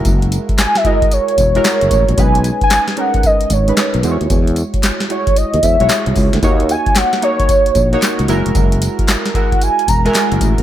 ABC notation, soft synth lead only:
X:1
M:4/4
L:1/16
Q:"Swing 16ths" 1/4=113
K:F#mix
V:1 name="Soft synth lead"
z4 g e d2 c4 c4 | g3 g3 f2 d2 c4 z2 | z6 c2 d2 e4 z2 | z2 g2 f2 c8 z2 |
z6 f2 g2 a g3 z2 |]